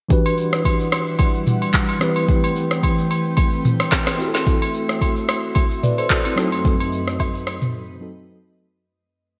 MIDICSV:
0, 0, Header, 1, 4, 480
1, 0, Start_track
1, 0, Key_signature, 1, "minor"
1, 0, Tempo, 545455
1, 92, Time_signature, 4, 2, 24, 8
1, 8263, End_track
2, 0, Start_track
2, 0, Title_t, "Ambient pad"
2, 0, Program_c, 0, 92
2, 92, Note_on_c, 0, 55, 78
2, 92, Note_on_c, 0, 64, 74
2, 92, Note_on_c, 0, 74, 71
2, 92, Note_on_c, 0, 78, 85
2, 1755, Note_off_c, 0, 55, 0
2, 1755, Note_off_c, 0, 64, 0
2, 1755, Note_off_c, 0, 74, 0
2, 1755, Note_off_c, 0, 78, 0
2, 1771, Note_on_c, 0, 52, 76
2, 1771, Note_on_c, 0, 79, 83
2, 1772, Note_on_c, 0, 57, 69
2, 1772, Note_on_c, 0, 60, 69
2, 1772, Note_on_c, 0, 71, 68
2, 3672, Note_off_c, 0, 52, 0
2, 3672, Note_off_c, 0, 60, 0
2, 3672, Note_off_c, 0, 71, 0
2, 3672, Note_off_c, 0, 79, 0
2, 3691, Note_on_c, 0, 76, 83
2, 3692, Note_on_c, 0, 66, 72
2, 5592, Note_off_c, 0, 66, 0
2, 5592, Note_off_c, 0, 76, 0
2, 5612, Note_on_c, 0, 42, 76
2, 5612, Note_on_c, 0, 60, 70
2, 5612, Note_on_c, 0, 71, 73
2, 5612, Note_on_c, 0, 75, 86
2, 7736, Note_off_c, 0, 57, 0
2, 7750, Note_off_c, 0, 42, 0
2, 7750, Note_off_c, 0, 60, 0
2, 7750, Note_off_c, 0, 71, 0
2, 7750, Note_off_c, 0, 75, 0
2, 8263, End_track
3, 0, Start_track
3, 0, Title_t, "Tine electric piano"
3, 0, Program_c, 1, 4
3, 75, Note_on_c, 1, 52, 74
3, 84, Note_on_c, 1, 62, 68
3, 93, Note_on_c, 1, 66, 69
3, 102, Note_on_c, 1, 67, 68
3, 110, Note_on_c, 1, 71, 86
3, 269, Control_c, 1, 64, 127
3, 1729, Note_off_c, 1, 52, 0
3, 1734, Note_off_c, 1, 62, 0
3, 1738, Note_off_c, 1, 66, 0
3, 1743, Note_off_c, 1, 67, 0
3, 1747, Note_off_c, 1, 71, 0
3, 1755, Note_on_c, 1, 52, 70
3, 1763, Note_on_c, 1, 60, 70
3, 1772, Note_on_c, 1, 64, 67
3, 1781, Note_on_c, 1, 67, 67
3, 1785, Control_c, 1, 64, 0
3, 1790, Note_on_c, 1, 71, 85
3, 1939, Control_c, 1, 64, 127
3, 3648, Note_off_c, 1, 52, 0
3, 3652, Note_off_c, 1, 60, 0
3, 3657, Note_off_c, 1, 64, 0
3, 3661, Note_off_c, 1, 67, 0
3, 3665, Note_off_c, 1, 71, 0
3, 3675, Note_on_c, 1, 60, 73
3, 3687, Note_on_c, 1, 64, 68
3, 3699, Note_on_c, 1, 66, 68
3, 3703, Control_c, 1, 64, 0
3, 3711, Note_on_c, 1, 67, 63
3, 3764, Note_off_c, 1, 67, 0
3, 3768, Note_on_c, 1, 69, 82
3, 3840, Control_c, 1, 64, 127
3, 5094, Note_off_c, 1, 60, 0
3, 5100, Note_off_c, 1, 64, 0
3, 5106, Note_off_c, 1, 66, 0
3, 5133, Note_on_c, 1, 74, 66
3, 5138, Note_on_c, 1, 71, 58
3, 5141, Note_off_c, 1, 69, 0
3, 5258, Note_off_c, 1, 74, 0
3, 5260, Note_off_c, 1, 71, 0
3, 5266, Note_on_c, 1, 72, 74
3, 5271, Note_on_c, 1, 69, 60
3, 5363, Note_off_c, 1, 69, 0
3, 5367, Note_off_c, 1, 72, 0
3, 5374, Note_on_c, 1, 69, 70
3, 5379, Note_on_c, 1, 66, 61
3, 5498, Note_off_c, 1, 69, 0
3, 5501, Note_off_c, 1, 66, 0
3, 5506, Note_on_c, 1, 64, 62
3, 5511, Note_on_c, 1, 60, 54
3, 5593, Note_off_c, 1, 60, 0
3, 5596, Note_on_c, 1, 54, 73
3, 5604, Note_on_c, 1, 60, 66
3, 5613, Note_on_c, 1, 63, 67
3, 5622, Note_on_c, 1, 66, 67
3, 5623, Control_c, 1, 64, 0
3, 5631, Note_on_c, 1, 69, 81
3, 5732, Note_off_c, 1, 64, 0
3, 5785, Control_c, 1, 64, 127
3, 7014, Note_off_c, 1, 54, 0
3, 7019, Note_off_c, 1, 60, 0
3, 7023, Note_off_c, 1, 63, 0
3, 7028, Note_off_c, 1, 66, 0
3, 7032, Note_off_c, 1, 69, 0
3, 7045, Note_on_c, 1, 54, 58
3, 7049, Note_on_c, 1, 60, 53
3, 7053, Note_on_c, 1, 63, 51
3, 7058, Note_on_c, 1, 66, 54
3, 7063, Note_on_c, 1, 69, 61
3, 7768, Note_off_c, 1, 54, 0
3, 7770, Note_off_c, 1, 60, 0
3, 7772, Note_off_c, 1, 63, 0
3, 7775, Note_off_c, 1, 66, 0
3, 7777, Note_off_c, 1, 69, 0
3, 7783, Control_c, 1, 64, 0
3, 8263, End_track
4, 0, Start_track
4, 0, Title_t, "Drums"
4, 91, Note_on_c, 9, 36, 122
4, 92, Note_on_c, 9, 82, 69
4, 179, Note_off_c, 9, 36, 0
4, 180, Note_off_c, 9, 82, 0
4, 221, Note_on_c, 9, 82, 62
4, 227, Note_on_c, 9, 67, 74
4, 309, Note_off_c, 9, 82, 0
4, 315, Note_off_c, 9, 67, 0
4, 331, Note_on_c, 9, 82, 90
4, 419, Note_off_c, 9, 82, 0
4, 462, Note_on_c, 9, 82, 55
4, 465, Note_on_c, 9, 37, 87
4, 550, Note_off_c, 9, 82, 0
4, 553, Note_off_c, 9, 37, 0
4, 572, Note_on_c, 9, 36, 84
4, 572, Note_on_c, 9, 82, 70
4, 575, Note_on_c, 9, 67, 73
4, 660, Note_off_c, 9, 36, 0
4, 660, Note_off_c, 9, 82, 0
4, 663, Note_off_c, 9, 67, 0
4, 704, Note_on_c, 9, 82, 56
4, 792, Note_off_c, 9, 82, 0
4, 810, Note_on_c, 9, 82, 69
4, 812, Note_on_c, 9, 37, 94
4, 815, Note_on_c, 9, 67, 78
4, 898, Note_off_c, 9, 82, 0
4, 900, Note_off_c, 9, 37, 0
4, 903, Note_off_c, 9, 67, 0
4, 1045, Note_on_c, 9, 67, 75
4, 1050, Note_on_c, 9, 36, 113
4, 1054, Note_on_c, 9, 82, 66
4, 1133, Note_off_c, 9, 67, 0
4, 1138, Note_off_c, 9, 36, 0
4, 1142, Note_off_c, 9, 82, 0
4, 1179, Note_on_c, 9, 82, 45
4, 1267, Note_off_c, 9, 82, 0
4, 1292, Note_on_c, 9, 82, 102
4, 1293, Note_on_c, 9, 45, 70
4, 1380, Note_off_c, 9, 82, 0
4, 1381, Note_off_c, 9, 45, 0
4, 1422, Note_on_c, 9, 82, 52
4, 1425, Note_on_c, 9, 67, 66
4, 1510, Note_off_c, 9, 82, 0
4, 1513, Note_off_c, 9, 67, 0
4, 1530, Note_on_c, 9, 36, 98
4, 1530, Note_on_c, 9, 39, 88
4, 1531, Note_on_c, 9, 82, 76
4, 1618, Note_off_c, 9, 36, 0
4, 1618, Note_off_c, 9, 39, 0
4, 1619, Note_off_c, 9, 82, 0
4, 1660, Note_on_c, 9, 67, 71
4, 1665, Note_on_c, 9, 82, 49
4, 1748, Note_off_c, 9, 67, 0
4, 1753, Note_off_c, 9, 82, 0
4, 1769, Note_on_c, 9, 37, 92
4, 1770, Note_on_c, 9, 82, 109
4, 1857, Note_off_c, 9, 37, 0
4, 1858, Note_off_c, 9, 82, 0
4, 1900, Note_on_c, 9, 67, 66
4, 1902, Note_on_c, 9, 82, 54
4, 1988, Note_off_c, 9, 67, 0
4, 1990, Note_off_c, 9, 82, 0
4, 2011, Note_on_c, 9, 36, 120
4, 2012, Note_on_c, 9, 82, 70
4, 2099, Note_off_c, 9, 36, 0
4, 2100, Note_off_c, 9, 82, 0
4, 2142, Note_on_c, 9, 82, 60
4, 2146, Note_on_c, 9, 67, 79
4, 2230, Note_off_c, 9, 82, 0
4, 2234, Note_off_c, 9, 67, 0
4, 2252, Note_on_c, 9, 82, 91
4, 2340, Note_off_c, 9, 82, 0
4, 2382, Note_on_c, 9, 82, 58
4, 2385, Note_on_c, 9, 37, 87
4, 2470, Note_off_c, 9, 82, 0
4, 2473, Note_off_c, 9, 37, 0
4, 2492, Note_on_c, 9, 36, 80
4, 2492, Note_on_c, 9, 82, 74
4, 2494, Note_on_c, 9, 67, 72
4, 2580, Note_off_c, 9, 36, 0
4, 2580, Note_off_c, 9, 82, 0
4, 2582, Note_off_c, 9, 67, 0
4, 2624, Note_on_c, 9, 82, 58
4, 2712, Note_off_c, 9, 82, 0
4, 2729, Note_on_c, 9, 82, 67
4, 2734, Note_on_c, 9, 67, 78
4, 2817, Note_off_c, 9, 82, 0
4, 2822, Note_off_c, 9, 67, 0
4, 2964, Note_on_c, 9, 67, 76
4, 2970, Note_on_c, 9, 36, 111
4, 2974, Note_on_c, 9, 82, 69
4, 3052, Note_off_c, 9, 67, 0
4, 3058, Note_off_c, 9, 36, 0
4, 3062, Note_off_c, 9, 82, 0
4, 3100, Note_on_c, 9, 82, 46
4, 3188, Note_off_c, 9, 82, 0
4, 3212, Note_on_c, 9, 82, 103
4, 3214, Note_on_c, 9, 45, 74
4, 3300, Note_off_c, 9, 82, 0
4, 3302, Note_off_c, 9, 45, 0
4, 3342, Note_on_c, 9, 82, 52
4, 3343, Note_on_c, 9, 37, 92
4, 3344, Note_on_c, 9, 67, 68
4, 3430, Note_off_c, 9, 82, 0
4, 3431, Note_off_c, 9, 37, 0
4, 3432, Note_off_c, 9, 67, 0
4, 3450, Note_on_c, 9, 36, 94
4, 3451, Note_on_c, 9, 38, 69
4, 3451, Note_on_c, 9, 39, 92
4, 3451, Note_on_c, 9, 82, 74
4, 3538, Note_off_c, 9, 36, 0
4, 3539, Note_off_c, 9, 38, 0
4, 3539, Note_off_c, 9, 39, 0
4, 3539, Note_off_c, 9, 82, 0
4, 3580, Note_on_c, 9, 67, 73
4, 3582, Note_on_c, 9, 37, 92
4, 3582, Note_on_c, 9, 38, 70
4, 3585, Note_on_c, 9, 82, 52
4, 3668, Note_off_c, 9, 67, 0
4, 3670, Note_off_c, 9, 37, 0
4, 3670, Note_off_c, 9, 38, 0
4, 3673, Note_off_c, 9, 82, 0
4, 3691, Note_on_c, 9, 82, 100
4, 3779, Note_off_c, 9, 82, 0
4, 3819, Note_on_c, 9, 67, 70
4, 3822, Note_on_c, 9, 82, 55
4, 3826, Note_on_c, 9, 38, 65
4, 3907, Note_off_c, 9, 67, 0
4, 3910, Note_off_c, 9, 82, 0
4, 3914, Note_off_c, 9, 38, 0
4, 3931, Note_on_c, 9, 36, 120
4, 3931, Note_on_c, 9, 82, 68
4, 4019, Note_off_c, 9, 36, 0
4, 4019, Note_off_c, 9, 82, 0
4, 4061, Note_on_c, 9, 82, 62
4, 4067, Note_on_c, 9, 67, 77
4, 4149, Note_off_c, 9, 82, 0
4, 4155, Note_off_c, 9, 67, 0
4, 4171, Note_on_c, 9, 82, 91
4, 4259, Note_off_c, 9, 82, 0
4, 4303, Note_on_c, 9, 82, 59
4, 4306, Note_on_c, 9, 37, 87
4, 4391, Note_off_c, 9, 82, 0
4, 4394, Note_off_c, 9, 37, 0
4, 4412, Note_on_c, 9, 36, 83
4, 4412, Note_on_c, 9, 82, 73
4, 4415, Note_on_c, 9, 67, 73
4, 4500, Note_off_c, 9, 36, 0
4, 4500, Note_off_c, 9, 82, 0
4, 4503, Note_off_c, 9, 67, 0
4, 4545, Note_on_c, 9, 82, 58
4, 4633, Note_off_c, 9, 82, 0
4, 4651, Note_on_c, 9, 82, 70
4, 4652, Note_on_c, 9, 37, 98
4, 4655, Note_on_c, 9, 67, 77
4, 4739, Note_off_c, 9, 82, 0
4, 4740, Note_off_c, 9, 37, 0
4, 4743, Note_off_c, 9, 67, 0
4, 4884, Note_on_c, 9, 67, 75
4, 4891, Note_on_c, 9, 36, 108
4, 4895, Note_on_c, 9, 82, 70
4, 4972, Note_off_c, 9, 67, 0
4, 4979, Note_off_c, 9, 36, 0
4, 4983, Note_off_c, 9, 82, 0
4, 5021, Note_on_c, 9, 82, 47
4, 5109, Note_off_c, 9, 82, 0
4, 5133, Note_on_c, 9, 82, 106
4, 5135, Note_on_c, 9, 45, 71
4, 5221, Note_off_c, 9, 82, 0
4, 5223, Note_off_c, 9, 45, 0
4, 5263, Note_on_c, 9, 82, 52
4, 5265, Note_on_c, 9, 67, 66
4, 5351, Note_off_c, 9, 82, 0
4, 5353, Note_off_c, 9, 67, 0
4, 5371, Note_on_c, 9, 36, 97
4, 5372, Note_on_c, 9, 39, 93
4, 5372, Note_on_c, 9, 82, 77
4, 5459, Note_off_c, 9, 36, 0
4, 5460, Note_off_c, 9, 39, 0
4, 5460, Note_off_c, 9, 82, 0
4, 5500, Note_on_c, 9, 67, 74
4, 5506, Note_on_c, 9, 82, 49
4, 5588, Note_off_c, 9, 67, 0
4, 5594, Note_off_c, 9, 82, 0
4, 5611, Note_on_c, 9, 37, 93
4, 5612, Note_on_c, 9, 82, 105
4, 5699, Note_off_c, 9, 37, 0
4, 5700, Note_off_c, 9, 82, 0
4, 5740, Note_on_c, 9, 67, 68
4, 5743, Note_on_c, 9, 82, 54
4, 5828, Note_off_c, 9, 67, 0
4, 5831, Note_off_c, 9, 82, 0
4, 5852, Note_on_c, 9, 36, 119
4, 5853, Note_on_c, 9, 82, 69
4, 5940, Note_off_c, 9, 36, 0
4, 5941, Note_off_c, 9, 82, 0
4, 5983, Note_on_c, 9, 82, 63
4, 5988, Note_on_c, 9, 67, 74
4, 6071, Note_off_c, 9, 82, 0
4, 6076, Note_off_c, 9, 67, 0
4, 6093, Note_on_c, 9, 82, 93
4, 6181, Note_off_c, 9, 82, 0
4, 6223, Note_on_c, 9, 82, 57
4, 6226, Note_on_c, 9, 37, 85
4, 6311, Note_off_c, 9, 82, 0
4, 6314, Note_off_c, 9, 37, 0
4, 6333, Note_on_c, 9, 36, 83
4, 6334, Note_on_c, 9, 82, 74
4, 6335, Note_on_c, 9, 67, 75
4, 6335, Note_on_c, 9, 77, 74
4, 6421, Note_off_c, 9, 36, 0
4, 6422, Note_off_c, 9, 82, 0
4, 6423, Note_off_c, 9, 67, 0
4, 6423, Note_off_c, 9, 77, 0
4, 6466, Note_on_c, 9, 82, 57
4, 6554, Note_off_c, 9, 82, 0
4, 6571, Note_on_c, 9, 82, 71
4, 6573, Note_on_c, 9, 37, 98
4, 6576, Note_on_c, 9, 67, 79
4, 6659, Note_off_c, 9, 82, 0
4, 6661, Note_off_c, 9, 37, 0
4, 6664, Note_off_c, 9, 67, 0
4, 6705, Note_on_c, 9, 45, 92
4, 6705, Note_on_c, 9, 82, 67
4, 6793, Note_off_c, 9, 45, 0
4, 6793, Note_off_c, 9, 82, 0
4, 8263, End_track
0, 0, End_of_file